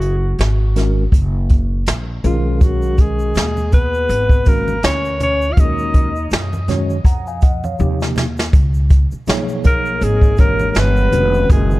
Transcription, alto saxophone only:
0, 0, Header, 1, 2, 480
1, 0, Start_track
1, 0, Tempo, 740741
1, 1690, Time_signature, 4, 2, 24, 8
1, 7644, End_track
2, 0, Start_track
2, 0, Title_t, "Alto saxophone"
2, 0, Program_c, 0, 65
2, 0, Note_on_c, 0, 66, 81
2, 260, Note_off_c, 0, 66, 0
2, 1462, Note_on_c, 0, 65, 74
2, 1706, Note_on_c, 0, 66, 83
2, 1716, Note_off_c, 0, 65, 0
2, 1947, Note_on_c, 0, 68, 86
2, 1956, Note_off_c, 0, 66, 0
2, 2418, Note_off_c, 0, 68, 0
2, 2422, Note_on_c, 0, 71, 94
2, 2907, Note_on_c, 0, 70, 87
2, 2916, Note_off_c, 0, 71, 0
2, 3138, Note_off_c, 0, 70, 0
2, 3143, Note_on_c, 0, 73, 92
2, 3360, Note_off_c, 0, 73, 0
2, 3388, Note_on_c, 0, 73, 96
2, 3583, Note_on_c, 0, 77, 70
2, 3593, Note_off_c, 0, 73, 0
2, 3630, Note_on_c, 0, 75, 92
2, 3640, Note_off_c, 0, 77, 0
2, 4100, Note_off_c, 0, 75, 0
2, 6263, Note_on_c, 0, 70, 98
2, 6505, Note_on_c, 0, 68, 95
2, 6515, Note_off_c, 0, 70, 0
2, 6742, Note_on_c, 0, 70, 93
2, 6751, Note_off_c, 0, 68, 0
2, 6943, Note_off_c, 0, 70, 0
2, 6943, Note_on_c, 0, 70, 74
2, 6987, Note_on_c, 0, 71, 112
2, 6997, Note_off_c, 0, 70, 0
2, 7459, Note_off_c, 0, 71, 0
2, 7471, Note_on_c, 0, 68, 95
2, 7644, Note_off_c, 0, 68, 0
2, 7644, End_track
0, 0, End_of_file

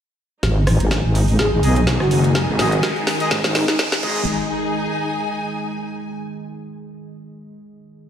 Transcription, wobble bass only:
0, 0, Header, 1, 2, 480
1, 0, Start_track
1, 0, Tempo, 480000
1, 431, Time_signature, 4, 2, 24, 8
1, 8094, End_track
2, 0, Start_track
2, 0, Title_t, "Wobble bass"
2, 0, Program_c, 0, 39
2, 430, Note_on_c, 0, 32, 91
2, 781, Note_off_c, 0, 32, 0
2, 802, Note_on_c, 0, 32, 91
2, 1021, Note_off_c, 0, 32, 0
2, 1042, Note_on_c, 0, 32, 94
2, 1373, Note_off_c, 0, 32, 0
2, 1390, Note_on_c, 0, 32, 96
2, 1501, Note_off_c, 0, 32, 0
2, 1522, Note_on_c, 0, 32, 94
2, 1613, Note_off_c, 0, 32, 0
2, 1630, Note_on_c, 0, 35, 101
2, 1981, Note_off_c, 0, 35, 0
2, 2002, Note_on_c, 0, 30, 103
2, 2461, Note_off_c, 0, 30, 0
2, 2482, Note_on_c, 0, 32, 98
2, 2573, Note_off_c, 0, 32, 0
2, 2590, Note_on_c, 0, 32, 99
2, 2813, Note_off_c, 0, 32, 0
2, 3310, Note_on_c, 0, 32, 102
2, 3421, Note_off_c, 0, 32, 0
2, 3442, Note_on_c, 0, 32, 97
2, 3661, Note_off_c, 0, 32, 0
2, 4031, Note_on_c, 0, 32, 99
2, 4254, Note_off_c, 0, 32, 0
2, 8094, End_track
0, 0, End_of_file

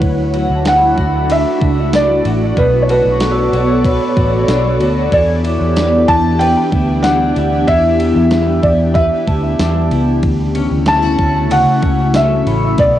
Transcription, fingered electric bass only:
0, 0, Header, 1, 2, 480
1, 0, Start_track
1, 0, Tempo, 638298
1, 14, Time_signature, 4, 2, 24, 8
1, 9769, End_track
2, 0, Start_track
2, 0, Title_t, "Fingered electric bass"
2, 0, Program_c, 0, 33
2, 14, Note_on_c, 0, 38, 111
2, 356, Note_off_c, 0, 38, 0
2, 374, Note_on_c, 0, 38, 101
2, 716, Note_off_c, 0, 38, 0
2, 734, Note_on_c, 0, 38, 102
2, 1076, Note_off_c, 0, 38, 0
2, 1216, Note_on_c, 0, 37, 75
2, 1671, Note_off_c, 0, 37, 0
2, 1694, Note_on_c, 0, 33, 90
2, 1922, Note_off_c, 0, 33, 0
2, 1933, Note_on_c, 0, 35, 115
2, 2275, Note_off_c, 0, 35, 0
2, 2293, Note_on_c, 0, 35, 91
2, 2635, Note_off_c, 0, 35, 0
2, 2651, Note_on_c, 0, 35, 95
2, 2994, Note_off_c, 0, 35, 0
2, 3136, Note_on_c, 0, 33, 96
2, 3363, Note_off_c, 0, 33, 0
2, 3370, Note_on_c, 0, 35, 92
2, 3600, Note_off_c, 0, 35, 0
2, 3612, Note_on_c, 0, 38, 83
2, 3841, Note_off_c, 0, 38, 0
2, 3854, Note_on_c, 0, 40, 113
2, 4196, Note_off_c, 0, 40, 0
2, 4216, Note_on_c, 0, 40, 99
2, 4557, Note_off_c, 0, 40, 0
2, 4575, Note_on_c, 0, 40, 106
2, 4917, Note_off_c, 0, 40, 0
2, 5056, Note_on_c, 0, 38, 93
2, 5511, Note_off_c, 0, 38, 0
2, 5537, Note_on_c, 0, 38, 82
2, 5764, Note_off_c, 0, 38, 0
2, 5775, Note_on_c, 0, 40, 117
2, 6116, Note_off_c, 0, 40, 0
2, 6137, Note_on_c, 0, 40, 100
2, 6478, Note_off_c, 0, 40, 0
2, 6494, Note_on_c, 0, 40, 100
2, 6836, Note_off_c, 0, 40, 0
2, 6975, Note_on_c, 0, 38, 86
2, 7203, Note_off_c, 0, 38, 0
2, 7213, Note_on_c, 0, 40, 88
2, 7441, Note_off_c, 0, 40, 0
2, 7454, Note_on_c, 0, 37, 91
2, 7682, Note_off_c, 0, 37, 0
2, 7695, Note_on_c, 0, 38, 97
2, 8036, Note_off_c, 0, 38, 0
2, 8051, Note_on_c, 0, 38, 98
2, 8395, Note_off_c, 0, 38, 0
2, 8415, Note_on_c, 0, 38, 99
2, 8756, Note_off_c, 0, 38, 0
2, 8896, Note_on_c, 0, 37, 88
2, 9351, Note_off_c, 0, 37, 0
2, 9373, Note_on_c, 0, 33, 86
2, 9602, Note_off_c, 0, 33, 0
2, 9617, Note_on_c, 0, 35, 120
2, 9769, Note_off_c, 0, 35, 0
2, 9769, End_track
0, 0, End_of_file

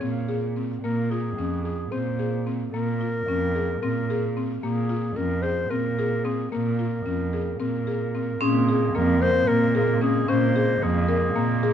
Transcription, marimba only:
0, 0, Header, 1, 2, 480
1, 0, Start_track
1, 0, Key_signature, -5, "minor"
1, 0, Tempo, 540054
1, 740, Time_signature, 7, 3, 24, 8
1, 10428, End_track
2, 0, Start_track
2, 0, Title_t, "Marimba"
2, 0, Program_c, 0, 12
2, 8, Note_on_c, 0, 60, 64
2, 140, Note_off_c, 0, 60, 0
2, 254, Note_on_c, 0, 68, 58
2, 385, Note_off_c, 0, 68, 0
2, 500, Note_on_c, 0, 60, 53
2, 629, Note_off_c, 0, 60, 0
2, 746, Note_on_c, 0, 58, 70
2, 874, Note_off_c, 0, 58, 0
2, 992, Note_on_c, 0, 65, 53
2, 1118, Note_off_c, 0, 65, 0
2, 1231, Note_on_c, 0, 61, 57
2, 1358, Note_off_c, 0, 61, 0
2, 1470, Note_on_c, 0, 68, 51
2, 1598, Note_off_c, 0, 68, 0
2, 1706, Note_on_c, 0, 60, 58
2, 1835, Note_off_c, 0, 60, 0
2, 1947, Note_on_c, 0, 68, 54
2, 2076, Note_off_c, 0, 68, 0
2, 2193, Note_on_c, 0, 60, 50
2, 2321, Note_off_c, 0, 60, 0
2, 2435, Note_on_c, 0, 58, 74
2, 2562, Note_off_c, 0, 58, 0
2, 2673, Note_on_c, 0, 65, 53
2, 2801, Note_off_c, 0, 65, 0
2, 2919, Note_on_c, 0, 61, 58
2, 3046, Note_off_c, 0, 61, 0
2, 3158, Note_on_c, 0, 68, 55
2, 3285, Note_off_c, 0, 68, 0
2, 3402, Note_on_c, 0, 60, 66
2, 3528, Note_off_c, 0, 60, 0
2, 3645, Note_on_c, 0, 68, 66
2, 3771, Note_off_c, 0, 68, 0
2, 3881, Note_on_c, 0, 60, 59
2, 4008, Note_off_c, 0, 60, 0
2, 4118, Note_on_c, 0, 58, 71
2, 4246, Note_off_c, 0, 58, 0
2, 4350, Note_on_c, 0, 65, 61
2, 4480, Note_off_c, 0, 65, 0
2, 4588, Note_on_c, 0, 61, 59
2, 4719, Note_off_c, 0, 61, 0
2, 4825, Note_on_c, 0, 68, 54
2, 4957, Note_off_c, 0, 68, 0
2, 5072, Note_on_c, 0, 60, 66
2, 5202, Note_off_c, 0, 60, 0
2, 5321, Note_on_c, 0, 68, 63
2, 5449, Note_off_c, 0, 68, 0
2, 5553, Note_on_c, 0, 60, 57
2, 5683, Note_off_c, 0, 60, 0
2, 5796, Note_on_c, 0, 58, 74
2, 5926, Note_off_c, 0, 58, 0
2, 6035, Note_on_c, 0, 65, 55
2, 6165, Note_off_c, 0, 65, 0
2, 6273, Note_on_c, 0, 61, 60
2, 6403, Note_off_c, 0, 61, 0
2, 6516, Note_on_c, 0, 68, 53
2, 6646, Note_off_c, 0, 68, 0
2, 6752, Note_on_c, 0, 60, 65
2, 6882, Note_off_c, 0, 60, 0
2, 6995, Note_on_c, 0, 68, 53
2, 7124, Note_off_c, 0, 68, 0
2, 7242, Note_on_c, 0, 60, 52
2, 7369, Note_off_c, 0, 60, 0
2, 7482, Note_on_c, 0, 61, 85
2, 7609, Note_off_c, 0, 61, 0
2, 7720, Note_on_c, 0, 68, 61
2, 7847, Note_off_c, 0, 68, 0
2, 7954, Note_on_c, 0, 58, 77
2, 8083, Note_off_c, 0, 58, 0
2, 8193, Note_on_c, 0, 70, 65
2, 8321, Note_off_c, 0, 70, 0
2, 8422, Note_on_c, 0, 58, 81
2, 8553, Note_off_c, 0, 58, 0
2, 8666, Note_on_c, 0, 68, 72
2, 8795, Note_off_c, 0, 68, 0
2, 8900, Note_on_c, 0, 61, 75
2, 9031, Note_off_c, 0, 61, 0
2, 9140, Note_on_c, 0, 61, 89
2, 9271, Note_off_c, 0, 61, 0
2, 9383, Note_on_c, 0, 68, 68
2, 9512, Note_off_c, 0, 68, 0
2, 9619, Note_on_c, 0, 58, 68
2, 9749, Note_off_c, 0, 58, 0
2, 9851, Note_on_c, 0, 70, 67
2, 9983, Note_off_c, 0, 70, 0
2, 10095, Note_on_c, 0, 58, 83
2, 10225, Note_off_c, 0, 58, 0
2, 10338, Note_on_c, 0, 68, 71
2, 10428, Note_off_c, 0, 68, 0
2, 10428, End_track
0, 0, End_of_file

